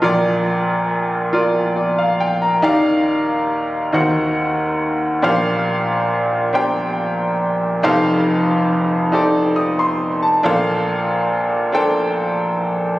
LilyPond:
<<
  \new Staff \with { instrumentName = "Grand piano" } { \time 6/8 \key bes \major \tempo 4. = 46 << { r2 d''16 f''16 g''16 bes''16~ | bes''16 r2 r8. | r2. | r2 ees'''16 c'''8 a''16~ |
a''16 r2 r8. | } \\ { <f' bes' d''>4. <f' bes' d''>4. | <ees' g' bes' d'' f''>4. <ees' ges' bes' c'' ges''>4. | <d' g' bes' c'' f''>4. <d' g' bes' c'' g''>4. | <ees' g' a' c'' f''>4. <ees' g' a' c'' d''>4. |
<d' a' bes' c'' f''>4. <d' a' bes' c'' g''>4. | } >> }
  \new Staff \with { instrumentName = "Grand piano" } { \clef bass \time 6/8 \key bes \major <bes,, bes,>2. | <ees, ees>4. <ees, ees>4. | <bes,, bes,>2. | <f,, f,>2. |
<bes,, bes,>2. | }
>>